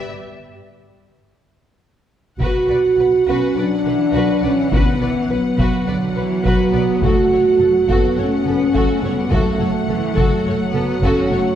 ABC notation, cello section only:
X:1
M:4/4
L:1/8
Q:1/4=104
K:Bm
V:1 name="Cello section" clef=bass
z8 | z4 F, E, F, E, | D, E, F,2 D, E, F, B, | A,2 F,2 A, B, A, G, |
F,2 E, F, A, B, C A, |]